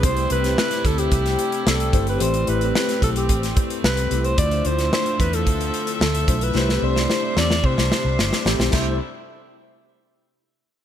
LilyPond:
<<
  \new Staff \with { instrumentName = "Alto saxophone" } { \time 4/4 \key c \major \tempo 4 = 110 c''8 b'8 b'8 a'16 g'4~ g'16 a'8. b'16 | c''8 b'8 b'8 a'16 g'8. r8 b'8. c''16 | d''8 c''8 c''8 b'16 a'4~ a'16 a'8. b'16~ | b'8 c''4 d''8 c''4. r8 |
e''8 r2. r8 | }
  \new Staff \with { instrumentName = "Tine electric piano" } { \time 4/4 \key c \major <a c' e' g' c''>8 <a c' e' g' c''>4. r4. <a c' e' g' c''>8 | <a c' e' g' b'>8 <a c' e' g' b' c''>4. r4. <a c' e' g' b'>8 | <a d' e' f' c''>8 <a d' e' f' c''>4. r4. <a d' e' f' c''>8 | <a c' e' g' c''>8 <a c' d' e' g' d''>4. r4. <a c' e' g' c''>8 |
<a c' e' g' c''>8 r2. r8 | }
  \new Staff \with { instrumentName = "String section" } { \time 4/4 \key c \major << { <g a d'>1~ | <g a d'>1 | <c' e''>1 | <g d'>1 |
<c g a d' e'>8 r2. r8 | } \\ { <c e'>1 | c'1 | <d f>1 | c1 |
r1 | } >> }
  \new Staff \with { instrumentName = "Fingered electric bass" } { \clef bass \time 4/4 \key c \major c,8 c,8 r8 d,8 c,8 r8 c,8 g,,8 | a,,8 a,,8 r8 b,,8 a,,8 r8 c,8 c,8 | d,8 d,8 r8 e,8 d,8 r8 d,8 b,,8 | c,8 c,8 r8 e,8 c16 c,16 r16 c,16 g,,16 r16 a,,16 b,,16 |
c,8 r2. r8 | }
  \new DrumStaff \with { instrumentName = "Drums" } \drummode { \time 4/4 <hh bd>16 hh16 hh16 <hh sn>16 sn16 <hh sn>16 <hh bd>16 hh16 <hh bd>16 <hh sn>16 hh16 hh16 sn16 hh16 <hh bd>16 hh16 | hh16 hh16 hh16 hh16 sn16 <hh sn>16 <hh bd>16 hh16 <hh bd>16 <hh sn>16 <hh bd>16 hh16 sn16 hh16 hh16 hh16 | <hh bd>16 hh16 hh16 <hh sn>16 sn16 hh16 <hh bd>16 hh16 <hh bd>16 hh16 hh16 hh16 sn16 hh16 <hh bd>16 hh16 | sn16 sn8 sn16 sn8 sn16 sn16 bd16 sn16 sn8 sn16 sn16 sn16 sn16 |
<cymc bd sn>4 r4 r4 r4 | }
>>